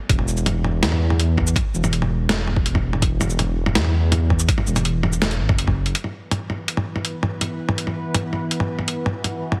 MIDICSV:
0, 0, Header, 1, 4, 480
1, 0, Start_track
1, 0, Tempo, 365854
1, 126, Time_signature, 4, 2, 24, 8
1, 12595, End_track
2, 0, Start_track
2, 0, Title_t, "Synth drone"
2, 0, Program_c, 0, 95
2, 7808, Note_on_c, 0, 59, 69
2, 7810, Note_on_c, 0, 71, 84
2, 7812, Note_on_c, 0, 52, 77
2, 11633, Note_off_c, 0, 71, 0
2, 11646, Note_on_c, 0, 66, 81
2, 12595, Note_off_c, 0, 52, 0
2, 12595, Note_off_c, 0, 59, 0
2, 12595, Note_off_c, 0, 66, 0
2, 12595, End_track
3, 0, Start_track
3, 0, Title_t, "Detuned saw bass"
3, 0, Program_c, 1, 39
3, 124, Note_on_c, 1, 28, 99
3, 1084, Note_on_c, 1, 40, 83
3, 1104, Note_off_c, 1, 28, 0
3, 2030, Note_off_c, 1, 40, 0
3, 2285, Note_on_c, 1, 28, 90
3, 3950, Note_off_c, 1, 28, 0
3, 3964, Note_on_c, 1, 28, 101
3, 4928, Note_on_c, 1, 40, 83
3, 4947, Note_off_c, 1, 28, 0
3, 5872, Note_off_c, 1, 40, 0
3, 6127, Note_on_c, 1, 28, 94
3, 7086, Note_on_c, 1, 33, 102
3, 7106, Note_off_c, 1, 28, 0
3, 7204, Note_on_c, 1, 30, 101
3, 7224, Note_off_c, 1, 33, 0
3, 7790, Note_off_c, 1, 30, 0
3, 12595, End_track
4, 0, Start_track
4, 0, Title_t, "Drums"
4, 124, Note_on_c, 9, 36, 114
4, 126, Note_on_c, 9, 42, 73
4, 246, Note_on_c, 9, 45, 48
4, 255, Note_off_c, 9, 36, 0
4, 257, Note_off_c, 9, 42, 0
4, 366, Note_on_c, 9, 82, 36
4, 377, Note_off_c, 9, 45, 0
4, 485, Note_off_c, 9, 82, 0
4, 485, Note_on_c, 9, 82, 37
4, 606, Note_on_c, 9, 42, 65
4, 606, Note_on_c, 9, 45, 76
4, 616, Note_off_c, 9, 82, 0
4, 737, Note_off_c, 9, 42, 0
4, 737, Note_off_c, 9, 45, 0
4, 846, Note_on_c, 9, 45, 50
4, 977, Note_off_c, 9, 45, 0
4, 1085, Note_on_c, 9, 38, 111
4, 1085, Note_on_c, 9, 42, 74
4, 1207, Note_on_c, 9, 45, 73
4, 1216, Note_off_c, 9, 38, 0
4, 1216, Note_off_c, 9, 42, 0
4, 1338, Note_off_c, 9, 45, 0
4, 1448, Note_on_c, 9, 45, 50
4, 1568, Note_on_c, 9, 42, 61
4, 1579, Note_off_c, 9, 45, 0
4, 1700, Note_off_c, 9, 42, 0
4, 1804, Note_on_c, 9, 36, 59
4, 1809, Note_on_c, 9, 45, 75
4, 1930, Note_on_c, 9, 82, 65
4, 1935, Note_off_c, 9, 36, 0
4, 1941, Note_off_c, 9, 45, 0
4, 2044, Note_on_c, 9, 36, 114
4, 2049, Note_on_c, 9, 42, 75
4, 2049, Note_on_c, 9, 45, 52
4, 2061, Note_off_c, 9, 82, 0
4, 2176, Note_off_c, 9, 36, 0
4, 2180, Note_off_c, 9, 42, 0
4, 2180, Note_off_c, 9, 45, 0
4, 2289, Note_on_c, 9, 82, 37
4, 2412, Note_off_c, 9, 82, 0
4, 2412, Note_on_c, 9, 45, 79
4, 2412, Note_on_c, 9, 82, 40
4, 2530, Note_on_c, 9, 42, 62
4, 2543, Note_off_c, 9, 45, 0
4, 2543, Note_off_c, 9, 82, 0
4, 2650, Note_on_c, 9, 45, 51
4, 2661, Note_off_c, 9, 42, 0
4, 2782, Note_off_c, 9, 45, 0
4, 3007, Note_on_c, 9, 38, 108
4, 3007, Note_on_c, 9, 42, 70
4, 3007, Note_on_c, 9, 45, 74
4, 3139, Note_off_c, 9, 38, 0
4, 3139, Note_off_c, 9, 42, 0
4, 3139, Note_off_c, 9, 45, 0
4, 3248, Note_on_c, 9, 45, 49
4, 3365, Note_on_c, 9, 36, 97
4, 3379, Note_off_c, 9, 45, 0
4, 3487, Note_on_c, 9, 42, 64
4, 3496, Note_off_c, 9, 36, 0
4, 3605, Note_on_c, 9, 36, 60
4, 3608, Note_on_c, 9, 45, 77
4, 3618, Note_off_c, 9, 42, 0
4, 3736, Note_off_c, 9, 36, 0
4, 3739, Note_off_c, 9, 45, 0
4, 3847, Note_on_c, 9, 45, 51
4, 3964, Note_on_c, 9, 36, 109
4, 3966, Note_on_c, 9, 42, 77
4, 3978, Note_off_c, 9, 45, 0
4, 4096, Note_off_c, 9, 36, 0
4, 4098, Note_off_c, 9, 42, 0
4, 4208, Note_on_c, 9, 45, 82
4, 4208, Note_on_c, 9, 82, 38
4, 4328, Note_off_c, 9, 82, 0
4, 4328, Note_on_c, 9, 82, 39
4, 4340, Note_off_c, 9, 45, 0
4, 4448, Note_on_c, 9, 42, 66
4, 4448, Note_on_c, 9, 45, 54
4, 4460, Note_off_c, 9, 82, 0
4, 4579, Note_off_c, 9, 42, 0
4, 4579, Note_off_c, 9, 45, 0
4, 4806, Note_on_c, 9, 45, 84
4, 4924, Note_on_c, 9, 38, 107
4, 4924, Note_on_c, 9, 42, 76
4, 4937, Note_off_c, 9, 45, 0
4, 5045, Note_on_c, 9, 45, 53
4, 5056, Note_off_c, 9, 38, 0
4, 5056, Note_off_c, 9, 42, 0
4, 5177, Note_off_c, 9, 45, 0
4, 5404, Note_on_c, 9, 42, 62
4, 5404, Note_on_c, 9, 45, 81
4, 5536, Note_off_c, 9, 42, 0
4, 5536, Note_off_c, 9, 45, 0
4, 5645, Note_on_c, 9, 36, 59
4, 5646, Note_on_c, 9, 45, 55
4, 5766, Note_on_c, 9, 82, 68
4, 5776, Note_off_c, 9, 36, 0
4, 5777, Note_off_c, 9, 45, 0
4, 5885, Note_on_c, 9, 36, 114
4, 5885, Note_on_c, 9, 42, 83
4, 5897, Note_off_c, 9, 82, 0
4, 6006, Note_on_c, 9, 45, 81
4, 6016, Note_off_c, 9, 36, 0
4, 6017, Note_off_c, 9, 42, 0
4, 6126, Note_on_c, 9, 82, 39
4, 6137, Note_off_c, 9, 45, 0
4, 6245, Note_off_c, 9, 82, 0
4, 6245, Note_on_c, 9, 42, 37
4, 6245, Note_on_c, 9, 45, 57
4, 6245, Note_on_c, 9, 82, 39
4, 6364, Note_off_c, 9, 42, 0
4, 6364, Note_on_c, 9, 42, 65
4, 6376, Note_off_c, 9, 45, 0
4, 6376, Note_off_c, 9, 82, 0
4, 6495, Note_off_c, 9, 42, 0
4, 6604, Note_on_c, 9, 45, 82
4, 6726, Note_on_c, 9, 82, 39
4, 6735, Note_off_c, 9, 45, 0
4, 6845, Note_on_c, 9, 38, 108
4, 6845, Note_on_c, 9, 42, 76
4, 6845, Note_on_c, 9, 45, 52
4, 6857, Note_off_c, 9, 82, 0
4, 6966, Note_off_c, 9, 42, 0
4, 6966, Note_on_c, 9, 42, 36
4, 6976, Note_off_c, 9, 38, 0
4, 6976, Note_off_c, 9, 45, 0
4, 7098, Note_off_c, 9, 42, 0
4, 7204, Note_on_c, 9, 36, 97
4, 7206, Note_on_c, 9, 45, 83
4, 7327, Note_on_c, 9, 42, 69
4, 7336, Note_off_c, 9, 36, 0
4, 7337, Note_off_c, 9, 45, 0
4, 7444, Note_on_c, 9, 36, 63
4, 7447, Note_on_c, 9, 45, 55
4, 7459, Note_off_c, 9, 42, 0
4, 7575, Note_off_c, 9, 36, 0
4, 7578, Note_off_c, 9, 45, 0
4, 7686, Note_on_c, 9, 42, 37
4, 7806, Note_off_c, 9, 42, 0
4, 7806, Note_on_c, 9, 42, 79
4, 7927, Note_on_c, 9, 45, 49
4, 7937, Note_off_c, 9, 42, 0
4, 8058, Note_off_c, 9, 45, 0
4, 8284, Note_on_c, 9, 42, 65
4, 8284, Note_on_c, 9, 45, 75
4, 8416, Note_off_c, 9, 42, 0
4, 8416, Note_off_c, 9, 45, 0
4, 8525, Note_on_c, 9, 45, 50
4, 8656, Note_off_c, 9, 45, 0
4, 8766, Note_on_c, 9, 42, 72
4, 8886, Note_on_c, 9, 45, 72
4, 8897, Note_off_c, 9, 42, 0
4, 9017, Note_off_c, 9, 45, 0
4, 9127, Note_on_c, 9, 45, 50
4, 9245, Note_on_c, 9, 42, 65
4, 9258, Note_off_c, 9, 45, 0
4, 9376, Note_off_c, 9, 42, 0
4, 9484, Note_on_c, 9, 45, 78
4, 9615, Note_off_c, 9, 45, 0
4, 9724, Note_on_c, 9, 42, 75
4, 9724, Note_on_c, 9, 45, 47
4, 9855, Note_off_c, 9, 42, 0
4, 9855, Note_off_c, 9, 45, 0
4, 10084, Note_on_c, 9, 45, 75
4, 10207, Note_on_c, 9, 42, 65
4, 10215, Note_off_c, 9, 45, 0
4, 10326, Note_on_c, 9, 45, 49
4, 10339, Note_off_c, 9, 42, 0
4, 10457, Note_off_c, 9, 45, 0
4, 10686, Note_on_c, 9, 42, 77
4, 10686, Note_on_c, 9, 45, 70
4, 10817, Note_off_c, 9, 42, 0
4, 10817, Note_off_c, 9, 45, 0
4, 10926, Note_on_c, 9, 45, 47
4, 11058, Note_off_c, 9, 45, 0
4, 11166, Note_on_c, 9, 42, 63
4, 11285, Note_on_c, 9, 45, 75
4, 11297, Note_off_c, 9, 42, 0
4, 11416, Note_off_c, 9, 45, 0
4, 11527, Note_on_c, 9, 45, 50
4, 11648, Note_on_c, 9, 42, 76
4, 11658, Note_off_c, 9, 45, 0
4, 11779, Note_off_c, 9, 42, 0
4, 11887, Note_on_c, 9, 45, 74
4, 12018, Note_off_c, 9, 45, 0
4, 12127, Note_on_c, 9, 42, 62
4, 12127, Note_on_c, 9, 45, 49
4, 12258, Note_off_c, 9, 42, 0
4, 12258, Note_off_c, 9, 45, 0
4, 12489, Note_on_c, 9, 45, 69
4, 12595, Note_off_c, 9, 45, 0
4, 12595, End_track
0, 0, End_of_file